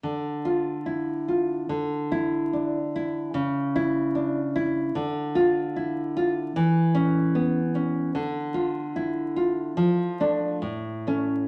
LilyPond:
\new Staff \with { instrumentName = "Nylon-string guitar" } { \time 2/4 \key d \minor \tempo 4 = 74 << { r8 f'4 r8 | r8 e'4 r8 | r8 e'4 r8 | r8 f'4 r8 |
r8 cis'4 r8 | r8 f'4 r8 | r8 d'8 r8 cis'8 | } \\ { d4 e'8 f'8 | d4 d'8 e'8 | cis4 d'8 e'8 | d4 e'8 f'8 |
e4 b8 cis'8 | d4 e'8 f'8 | f8 a8 a,8 a8 | } >> }